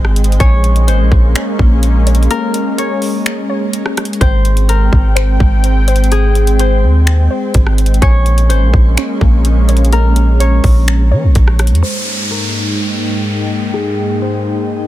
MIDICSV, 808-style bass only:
0, 0, Header, 1, 2, 480
1, 0, Start_track
1, 0, Key_signature, -4, "major"
1, 0, Tempo, 476190
1, 404, Time_signature, 4, 2, 24, 8
1, 14990, End_track
2, 0, Start_track
2, 0, Title_t, "808-style bass"
2, 0, Program_c, 0, 38
2, 0, Note_on_c, 0, 32, 113
2, 387, Note_off_c, 0, 32, 0
2, 405, Note_on_c, 0, 34, 104
2, 885, Note_on_c, 0, 32, 99
2, 900, Note_off_c, 0, 34, 0
2, 1004, Note_on_c, 0, 34, 99
2, 1020, Note_off_c, 0, 32, 0
2, 1118, Note_off_c, 0, 34, 0
2, 1125, Note_on_c, 0, 34, 109
2, 1355, Note_off_c, 0, 34, 0
2, 1606, Note_on_c, 0, 34, 103
2, 2296, Note_off_c, 0, 34, 0
2, 4245, Note_on_c, 0, 32, 112
2, 4936, Note_off_c, 0, 32, 0
2, 4965, Note_on_c, 0, 32, 110
2, 5426, Note_off_c, 0, 32, 0
2, 5446, Note_on_c, 0, 32, 107
2, 6885, Note_on_c, 0, 39, 106
2, 6900, Note_off_c, 0, 32, 0
2, 7341, Note_off_c, 0, 39, 0
2, 7607, Note_on_c, 0, 32, 115
2, 8067, Note_off_c, 0, 32, 0
2, 8085, Note_on_c, 0, 34, 107
2, 8565, Note_on_c, 0, 32, 99
2, 8580, Note_off_c, 0, 34, 0
2, 8685, Note_on_c, 0, 34, 102
2, 8700, Note_off_c, 0, 32, 0
2, 8799, Note_off_c, 0, 34, 0
2, 8805, Note_on_c, 0, 34, 116
2, 9035, Note_off_c, 0, 34, 0
2, 9286, Note_on_c, 0, 34, 104
2, 10685, Note_off_c, 0, 34, 0
2, 10725, Note_on_c, 0, 34, 110
2, 11205, Note_on_c, 0, 53, 99
2, 11220, Note_off_c, 0, 34, 0
2, 11325, Note_on_c, 0, 34, 108
2, 11340, Note_off_c, 0, 53, 0
2, 11439, Note_off_c, 0, 34, 0
2, 11447, Note_on_c, 0, 34, 113
2, 11804, Note_on_c, 0, 41, 101
2, 11819, Note_off_c, 0, 34, 0
2, 11918, Note_off_c, 0, 41, 0
2, 14990, End_track
0, 0, End_of_file